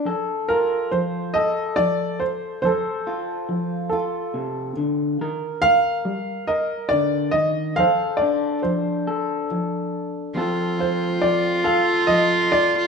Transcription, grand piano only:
\new Staff \with { instrumentName = "Grand piano" } { \time 3/4 \key f \mixolydian \tempo 4 = 70 << { r8 bes'8 c''8 ees''8 d''8 c''8 | c''4. a'4 r8 | r8 f''4 ees''8 d''8 ees''8 | f''8 d''8 c''4 r4 |
r8 c''8 d''8 f''8 ees''8 d''8 | } \\ { r2. | a'4. r4. | r2. | c''4. r4. |
r2. | } >> }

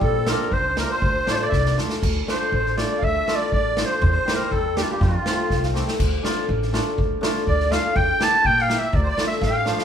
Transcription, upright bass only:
\new Staff \with { instrumentName = "Upright bass" } { \clef bass \time 2/4 \key d \minor \tempo 4 = 121 bes,,4 cis,4 | d,8 a,,8 c,8 d,8 | d,8 r8 a,,4 | d,8 r8 a,,4 |
e,8 r8 e,4 | f,8 r8 c,4 | d,8 r8 a,,4 | d,8 r8 d,4 |
e,8 r8 bes,4 | d,8 r8 a,,4 | }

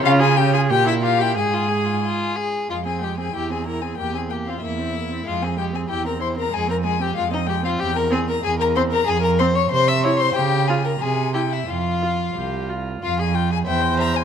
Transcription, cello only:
\new Staff \with { instrumentName = "Cello" } { \clef bass \time 2/4 \key f \minor \tempo 4 = 93 des4 bes,4 | aes,4. r8 | f,4 e,4 | e,4 e,4 |
f,4 e,4 | f,4 f,4 | e,4 e,4 | f,4 c4 |
des4 c4 | f,4 c,4 | f,4 e,4 | }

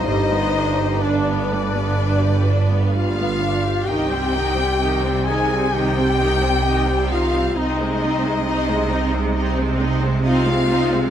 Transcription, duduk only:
\new Staff \with { instrumentName = "Duduk" } { \time 4/4 \key c \minor \tempo 4 = 65 ees'4 d'4. r8 f'4 | g'4. aes'8 g'4. f'8 | ees'2~ ees'8 r8 f'4 | }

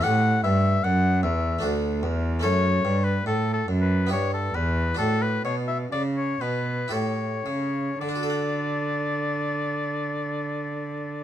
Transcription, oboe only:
\new Staff \with { instrumentName = "Oboe" } { \time 3/4 \key d \major \tempo 4 = 67 fis''8 e''8 fis''8 e''8 r4 | cis''8. b'16 \tuplet 3/2 { a'8 a'8 b'8 } cis''16 a'16 b'8 | a'16 b'16 cis''16 e''16 d''16 cis''16 b'8 cis''4 | d''2. | }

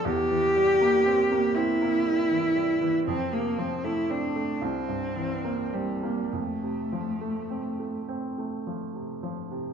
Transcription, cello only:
\new Staff \with { instrumentName = "Cello" } { \time 6/8 \key f \major \tempo 4. = 38 g'4. e'4. | c'16 bes16 c'16 e'16 d'8 c'4 g8 | a4. r4. | }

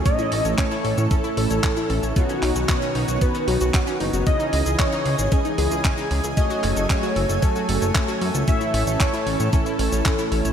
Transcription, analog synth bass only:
\new Staff \with { instrumentName = "Analog synth bass" } { \clef bass \time 4/4 \key a \lydian \tempo 4 = 114 r8 a,,16 a,,16 r8 a,,16 a,16 r8 a,,16 a,,16 r8 a,,16 a,,16 | r8 b,,16 b,,16 r8 b,,16 b,,16 r8 b,,16 b,,16 r8 fis,,16 fis,,16 | r8 cis,16 cis,16 r8 cis,16 gis,,16 r8 cis,16 cis,16 r8 cis,16 cis,16 | r8 fis,,16 fis,,16 r8 fis,,16 fis,,16 r8 fis,,16 fis,,16 r8 fis,16 cis,16 |
r8 a,,16 a,,16 r8 a,,16 a,16 r8 a,,16 a,,16 r8 a,,16 a,,16 | }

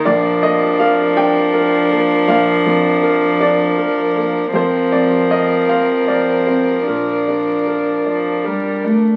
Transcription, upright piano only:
\new Staff \with { instrumentName = "Upright piano" } { \time 6/8 \key bes \major \tempo 4. = 53 << { d''8 ees''8 f''8 g''4. | f''4. d''4. | c''8 d''8 ees''8 f''8 d''8 c''8 | bes'4. r4. | } \\ { bes,,8 bes8 bes'8 d'8 bes'8 bes8 | bes,,8 f,8 bes'8 d'8 bes'8 bes8 | f,8 c'8 bes'8 c''8 bes'8 c'8 | bes,8 d'8 bes'8 d''8 bes'8 d'8 | } >> }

